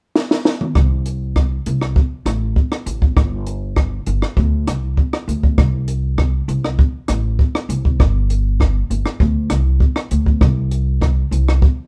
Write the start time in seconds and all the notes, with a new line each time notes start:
0.15 snare
0.31 snare
0.45 snare
0.61 mid tom
0.75 C2, kick, cross-stick
1.06 closed hi-hat
1.36 kick, cross-stick
1.66 C2, closed hi-hat
1.81 cross-stick
1.96 kick
2.25 A1, cross-stick, closed hi-hat
2.56 kick
2.72 cross-stick
2.86 A1, closed hi-hat
3.02 kick
3.17 G1, kick, cross-stick
3.47 closed hi-hat
3.76 kick, cross-stick
4.06 G1, closed hi-hat
4.22 cross-stick
4.37 D2, kick
4.67 C2, cross-stick, closed hi-hat
4.97 kick
5.13 cross-stick
5.28 D2, closed hi-hat
5.43 kick
5.58 C2, kick, cross-stick
5.88 closed hi-hat
6.18 kick, cross-stick
6.48 C2, closed hi-hat
6.65 cross-stick
6.79 kick
7.08 A1, cross-stick, closed hi-hat
7.39 kick
7.55 cross-stick
7.69 C2, closed hi-hat
7.85 kick
8.00 G1, kick, cross-stick
8.30 closed hi-hat
8.60 kick, cross-stick
8.90 G1, closed hi-hat
9.06 cross-stick
9.20 D2, kick
9.50 C2, cross-stick, closed hi-hat
9.80 kick
9.96 cross-stick
10.11 D2, closed hi-hat
10.26 kick
10.41 C2, kick, cross-stick
10.71 closed hi-hat
11.01 kick, cross-stick
11.31 C2, closed hi-hat
11.48 cross-stick
11.62 kick